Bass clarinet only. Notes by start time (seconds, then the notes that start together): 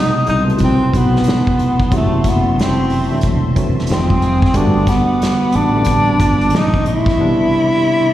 Already playing: D#4
0.29 D#4
0.64 C4
0.97 B3
1.96 A3
2.29 B3
2.62 C4
3.91 C4
4.57 D4
4.89 B3
5.56 D4
6.57 D#4
6.87 E4